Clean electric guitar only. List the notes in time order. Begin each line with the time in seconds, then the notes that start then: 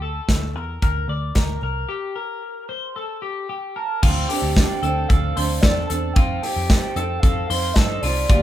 0.02 A4
0.56 A#4
0.82 A#4
1.09 D5
1.36 A#4
1.63 A#4
1.89 G4
2.16 A#4
2.69 C5
2.96 A4
3.22 G4
3.49 G4
3.76 A#4
4.03 F4
4.29 G4
4.83 A4
5.09 A4
5.37 C5
5.63 A4
5.90 A4
6.16 F4
6.43 G4
6.97 A4
7.23 A4
7.50 C5
7.76 A4
8.03 F4
8.30 F4